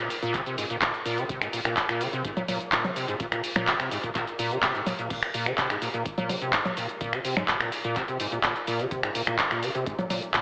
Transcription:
0.10 open hi-hat, shaker
0.22 A#2, closed hi-hat, shaker
0.34 C#3, kick, clap, closed hi-hat, shaker
0.46 C3, closed hi-hat, shaker
0.58 G#2, open hi-hat, shaker
0.70 A#2, closed hi-hat, shaker
0.82 A#2, kick, clap, closed hi-hat, shaker
0.94 closed hi-hat, shaker
1.06 A#2, open hi-hat, shaker
1.18 C#3, closed hi-hat, shaker
1.29 C3, kick, closed hi-hat, shaker
1.42 G#2, finger snap, closed hi-hat, shaker
1.53 A#2, open hi-hat, shaker
1.65 A#2, finger snap, shaker
1.77 kick, clap, closed hi-hat, shaker
1.89 A#2, finger snap, closed hi-hat, shaker
2.01 C#3, open hi-hat, shaker
2.13 C3, closed hi-hat, shaker
2.25 G#2, kick, closed hi-hat, shaker
2.37 A#2, closed hi-hat, low conga, shaker
2.48 A#2, open hi-hat, low conga, shaker
2.61 closed hi-hat, shaker
2.72 A#2, kick, clap, closed hi-hat, shaker
2.84 C#3, closed hi-hat, low conga, shaker
2.96 C3, open hi-hat, shaker
3.08 G#2, closed hi-hat, shaker
3.20 A#2, kick, closed hi-hat, shaker
3.32 A#2, finger snap, closed hi-hat, shaker
3.44 open hi-hat, shaker
3.56 A#2, finger snap, low conga, shaker
3.67 C#3, kick, clap, closed hi-hat, shaker
3.80 C3, finger snap, closed hi-hat, shaker
3.91 G#2, open hi-hat, shaker
4.03 A#2, kick, closed hi-hat, shaker
4.15 A#2, kick, clap, closed hi-hat, shaker
4.27 closed hi-hat, shaker
4.39 A#2, open hi-hat, shaker
4.51 C#3, closed hi-hat, shaker
4.63 C3, kick, clap, closed hi-hat, shaker
4.75 G#2, closed hi-hat, shaker
4.86 A#2, open hi-hat, low conga, shaker
4.99 A#2, closed hi-hat, shaker
5.10 A#2, kick, closed hi-hat, crash, shaker
5.23 finger snap, closed hi-hat, shaker
5.34 A#2, open hi-hat, shaker
5.46 C#3, finger snap, closed hi-hat, shaker
5.58 C3, kick, clap, closed hi-hat, shaker
5.70 G#2, finger snap, closed hi-hat, shaker
5.82 A#2, open hi-hat, shaker
5.94 A#2, closed hi-hat, shaker
6.06 kick, closed hi-hat, shaker
6.18 A#2, closed hi-hat, low conga, shaker
6.29 C#3, open hi-hat, low conga, shaker
6.42 C3, closed hi-hat, shaker
6.53 G#2, kick, clap, closed hi-hat, shaker
6.65 A#2, closed hi-hat, low conga, shaker
6.77 A#2, open hi-hat, shaker
6.89 closed hi-hat, shaker
7.01 A#2, kick, closed hi-hat, shaker
7.13 C#3, finger snap, closed hi-hat, shaker
7.25 C3, open hi-hat, shaker
7.37 G#2, finger snap, low conga, shaker
7.48 A#2, kick, clap, closed hi-hat, shaker
7.60 A#2, finger snap, closed hi-hat, shaker
7.72 open hi-hat, shaker
7.84 A#2, closed hi-hat, shaker
7.96 C#3, kick, clap, closed hi-hat, shaker
8.08 C3, closed hi-hat, shaker
8.20 G#2, open hi-hat, shaker
8.32 A#2, closed hi-hat, shaker
8.43 A#2, kick, clap, closed hi-hat, shaker
8.56 closed hi-hat, shaker
8.67 A#2, open hi-hat, shaker
8.80 C#3, closed hi-hat, shaker
8.91 C3, kick, closed hi-hat, shaker
9.03 G#2, finger snap, closed hi-hat, shaker
9.15 A#2, open hi-hat, shaker
9.27 A#2, finger snap, shaker
9.39 kick, clap, closed hi-hat, shaker
9.51 A#2, finger snap, closed hi-hat, shaker
9.63 C#3, open hi-hat, shaker
9.75 C3, closed hi-hat, shaker
9.86 G#2, kick, closed hi-hat, shaker
9.99 A#2, closed hi-hat, low conga, shaker
10.10 A#2, open hi-hat, low conga, shaker
10.22 closed hi-hat, shaker
10.34 A#2, kick, clap, closed hi-hat, shaker

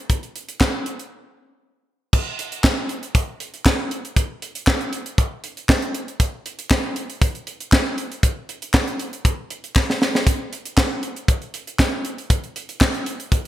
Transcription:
0.10 kick, closed hi-hat
0.23 closed hi-hat
0.36 closed hi-hat
0.49 closed hi-hat
0.60 kick, snare, clap
0.86 closed hi-hat
0.99 closed hi-hat
2.13 kick, crash
2.39 closed hi-hat
2.52 closed hi-hat
2.64 kick, snare, clap
2.89 closed hi-hat
3.03 closed hi-hat
3.15 kick, closed hi-hat
3.40 closed hi-hat
3.54 closed hi-hat
3.65 kick, snare, clap
3.91 closed hi-hat
4.05 closed hi-hat
4.16 kick, closed hi-hat
4.42 closed hi-hat
4.55 closed hi-hat
4.67 kick, snare, clap
4.81 closed hi-hat
4.93 closed hi-hat
5.06 closed hi-hat
5.18 kick, closed hi-hat
5.44 closed hi-hat
5.57 closed hi-hat
5.69 kick, snare, clap
5.82 closed hi-hat
5.94 closed hi-hat
6.08 closed hi-hat
6.20 kick, closed hi-hat
6.46 closed hi-hat
6.59 closed hi-hat
6.70 kick, snare, clap
6.96 closed hi-hat
7.10 closed hi-hat
7.22 kick, closed hi-hat
7.35 closed hi-hat
7.47 closed hi-hat
7.60 closed hi-hat
7.72 kick, snare, clap
7.98 closed hi-hat
8.12 closed hi-hat
8.23 kick, closed hi-hat
8.49 closed hi-hat
8.62 closed hi-hat
8.74 kick, snare, clap
8.88 closed hi-hat
8.99 closed hi-hat
9.13 closed hi-hat
9.25 kick, closed hi-hat
9.50 closed hi-hat
9.64 closed hi-hat
9.76 kick, snare, clap
9.90 snare
10.02 snare
10.15 snare
10.27 kick, closed hi-hat
10.53 closed hi-hat
10.65 closed hi-hat
10.77 kick, snare, clap
11.03 closed hi-hat
11.16 closed hi-hat
11.28 kick, closed hi-hat
11.42 closed hi-hat
11.54 closed hi-hat
11.67 closed hi-hat
11.79 kick, snare, clap
12.05 closed hi-hat
12.18 closed hi-hat
12.30 kick, closed hi-hat
12.44 closed hi-hat
12.56 closed hi-hat
12.69 closed hi-hat
12.81 kick, snare, clap
12.94 closed hi-hat
13.06 closed hi-hat
13.20 closed hi-hat
13.32 kick, closed hi-hat

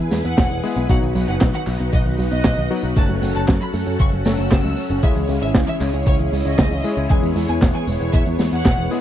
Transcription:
Already playing: G#3 B3 E4 G#4 B4 G#5
0.11 E2 G#3, snare, open hi-hat, tambourine
0.25 E2 B3 F#5, closed hi-hat, tambourine
0.37 E1 B2, kick, snare, clap, closed hi-hat, tambourine
0.50 E1 E3, closed hi-hat, tambourine
0.63 G#3 B3 E4 G#4, open hi-hat, tambourine
0.76 B1 B3, closed hi-hat, tambourine
0.89 B1 B2 F#3 B3 D#4 F#4 F#5, kick, closed hi-hat, tambourine
1.02 B1 D#3, closed hi-hat, tambourine
1.15 B1 F#3, open hi-hat, tambourine
1.28 F#1 B3 F#5, closed hi-hat, tambourine
1.41 B1 B2, kick, snare, clap, closed hi-hat, tambourine
1.54 D#3 F#5, closed hi-hat, tambourine
1.67 B1 F#3, clap, open hi-hat, tambourine
1.80 B1 B3, closed hi-hat, tambourine
1.93 B1 B2 D#5, kick, closed hi-hat, tambourine
2.06 B1 D#3, closed hi-hat, tambourine
2.18 B1 F#3, open hi-hat, tambourine
2.31 B1 B3 D#5, closed hi-hat, tambourine
2.44 B1 B2, kick, snare, clap, closed hi-hat, tambourine
2.57 B1 D#3, closed hi-hat, tambourine
2.70 F#3 B3 D#4 F#4, open hi-hat, tambourine
2.83 B1 B3, closed hi-hat, tambourine
2.96 F#1 C#3 F#3 A3 C#4 F#4 A4 A5, kick, closed hi-hat, tambourine
3.09 F#1 F#3, closed hi-hat, tambourine
3.22 F#1 A3, open hi-hat, tambourine
3.35 F#1 C#4 A5, closed hi-hat, tambourine
3.48 F#2 C#3, kick, snare, clap, closed hi-hat, tambourine
3.61 F#3 B5, closed hi-hat, tambourine
3.74 F#2 A3, open hi-hat, tambourine
3.86 F#2 C#4, closed hi-hat, tambourine
4.00 F#1 C#3 C#6, kick, closed hi-hat, tambourine
4.12 F#1 F#3, closed hi-hat, tambourine
4.25 F#1 F#3 A3 C#4 A4, snare, open hi-hat, tambourine
4.38 F#1 C#4 E6, closed hi-hat, tambourine
4.51 F#1 C#3, kick, snare, clap, closed hi-hat, tambourine
4.64 C#2 F#3, closed hi-hat, tambourine
4.77 A3, open hi-hat, tambourine
4.90 F#1 C#4, closed hi-hat, tambourine
5.02 C#2 C#3 G#3 C#4 E4 G#4 C#5 E5, kick, closed hi-hat, tambourine
5.16 C#2 E3, closed hi-hat, tambourine
5.28 C#2 G#3, open hi-hat, tambourine
5.42 G#1 C#4 E5, closed hi-hat, tambourine
5.54 C#2 C#3, kick, snare, clap, closed hi-hat, tambourine
5.68 E3 E5, closed hi-hat, tambourine
5.80 C#2 G#3, clap, open hi-hat, tambourine
5.93 C#2 C#4, closed hi-hat, tambourine
6.06 C#2 C#3 C#5, kick, closed hi-hat, tambourine
6.19 C#2 E3, closed hi-hat, tambourine
6.32 C#2 G#3, open hi-hat, tambourine
6.45 C#2 C#4 D#5, closed hi-hat, tambourine
6.58 C#2 C#3, kick, snare, clap, closed hi-hat, tambourine
6.71 C#2 E3, closed hi-hat, tambourine
6.84 G#3 C#4 E4 G#4, open hi-hat, tambourine
6.97 C#2 C#4, closed hi-hat, tambourine
7.09 E2 B2 G#3 B3 E4 G#4 G#5, kick, closed hi-hat, tambourine
7.23 E2 E3, closed hi-hat, tambourine
7.36 E2 G#3, open hi-hat, tambourine
7.48 E2 B3 G#5, closed hi-hat, tambourine
7.62 E1 B2, kick, snare, clap, closed hi-hat, tambourine
7.74 E3 G#5, closed hi-hat, tambourine
7.87 E1 G#3, open hi-hat, tambourine
8.00 E1 B3, closed hi-hat, tambourine
8.13 E2 B2 E5, kick, closed hi-hat, tambourine
8.26 E2 E3, closed hi-hat, tambourine
8.39 E2 G#3, snare, open hi-hat, tambourine
8.52 E2 B3 F#5, closed hi-hat, tambourine
8.65 E1 B2, kick, snare, clap, closed hi-hat, tambourine
8.77 E1 E3, closed hi-hat, tambourine
8.91 G#3 B3 E4 G#4, open hi-hat, tambourine

